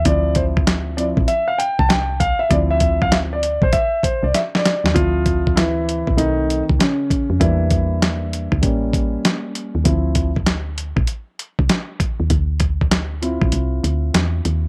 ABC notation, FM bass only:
X:1
M:4/4
L:1/16
Q:"Swing 16ths" 1/4=98
K:Dm
V:1 name="FM bass" clef=bass
D,,6- D,, B,,, z3 C,,4 z | D,,6- D,, B,,, z3 C,, z3 _E,, | D,,6- D,, B,,, =B,,,3 ^C,, z3 F,, | E,,6- E,, D,, A,,,4 z3 _E,, |
D,,6- D,, B,,, z3 C,, z3 _E,, | D,,6- D,, B,,, C,,2 D,,2 E,,2 _E,,2 |]